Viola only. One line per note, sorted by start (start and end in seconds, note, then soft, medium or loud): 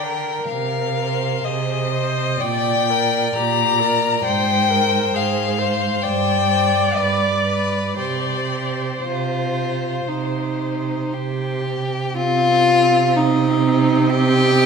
0.04 1.46 A#4 medium
1.44 1.92 G#4 soft
1.92 2.42 C5 medium
2.41 2.91 D5 medium
2.90 3.37 A#4 medium
3.36 3.81 G4 medium
3.80 4.24 A#4 medium
4.24 4.72 C5 medium
4.70 5.16 A#4 medium
5.14 5.60 G#4 medium
5.58 6.05 C5 medium
6.03 7.99 D5 medium
8.00 11.60 C5 soft
12.16 14.66 C4 medium